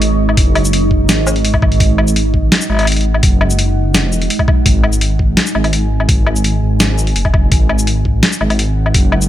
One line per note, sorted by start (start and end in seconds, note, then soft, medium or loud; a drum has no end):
0.00 0.36 G#1 loud
0.00 9.29 G#3 medium
0.00 9.29 D#4 medium
0.00 9.29 D#5 medium
0.00 1.78 C#6 medium
0.00 closed hi-hat medium
0.29 low woodblock medium
0.37 1.07 F#1 medium
0.37 kick loud
0.37 closed hi-hat medium
0.55 closed hi-hat soft
0.55 low woodblock medium
0.65 shaker medium
0.73 closed hi-hat medium
0.91 kick medium
1.09 1.79 G#1 loud
1.09 snare loud
1.09 closed hi-hat medium
1.09 shaker medium
1.27 low woodblock medium
1.27 shaker medium
1.36 closed hi-hat soft
1.45 closed hi-hat medium
1.54 kick medium
1.54 low woodblock medium
1.62 kick loud
1.62 low woodblock medium
1.72 closed hi-hat soft
1.80 2.50 G#1 loud
1.80 4.65 F#5 medium
1.80 kick loud
1.80 closed hi-hat medium
1.98 low woodblock medium
2.07 shaker medium
2.16 closed hi-hat medium
2.34 kick medium
2.52 snare loud
2.52 closed hi-hat medium
2.61 shaker medium
2.69 3.22 G#1 loud
2.69 low woodblock soft
2.72 low woodblock soft
2.75 low woodblock soft
2.77 closed hi-hat soft
2.77 low woodblock soft
2.79 low woodblock medium
2.81 low woodblock soft
2.83 low woodblock medium
2.85 closed hi-hat medium
2.85 low woodblock medium
2.92 closed hi-hat medium
2.96 closed hi-hat soft
3.01 closed hi-hat soft
3.14 low woodblock medium
3.23 3.98 F#1 medium
3.23 kick loud
3.23 closed hi-hat medium
3.41 low woodblock medium
3.50 shaker medium
3.59 closed hi-hat medium
3.95 4.29 F1 medium
3.95 snare loud
3.95 closed hi-hat medium
3.95 shaker medium
4.12 shaker medium
4.22 closed hi-hat soft
4.30 closed hi-hat medium
4.39 kick medium
4.39 low woodblock medium
4.48 kick loud
4.48 low woodblock medium
4.65 5.36 G#1 loud
4.65 7.50 G#5 medium
4.65 kick loud
4.65 closed hi-hat medium
4.84 low woodblock medium
4.93 shaker medium
5.01 closed hi-hat medium
5.19 kick medium
5.37 snare loud
5.37 closed hi-hat medium
5.46 shaker medium
5.55 6.07 G#1 loud
5.55 low woodblock medium
5.64 closed hi-hat soft
5.64 low woodblock medium
5.73 closed hi-hat medium
6.00 low woodblock medium
6.09 6.61 G#1 loud
6.09 kick loud
6.09 closed hi-hat medium
6.27 low woodblock medium
6.36 shaker medium
6.44 closed hi-hat medium
6.62 7.14 G#1 loud
6.80 snare loud
6.80 closed hi-hat medium
6.80 shaker medium
6.98 shaker medium
7.07 closed hi-hat soft
7.16 7.50 F#1 loud
7.16 closed hi-hat medium
7.25 kick medium
7.25 low woodblock medium
7.34 kick loud
7.34 low woodblock soft
7.52 8.22 G#1 medium
7.52 9.29 F#5 medium
7.52 kick loud
7.52 closed hi-hat medium
7.69 low woodblock medium
7.79 shaker medium
7.87 closed hi-hat medium
8.05 kick medium
8.23 snare loud
8.23 closed hi-hat medium
8.32 shaker medium
8.41 8.93 G#1 loud
8.41 low woodblock medium
8.50 closed hi-hat soft
8.50 low woodblock medium
8.59 closed hi-hat medium
8.86 low woodblock medium
8.94 9.29 F#1 loud
8.94 kick loud
8.94 closed hi-hat medium
9.12 low woodblock medium
9.21 shaker medium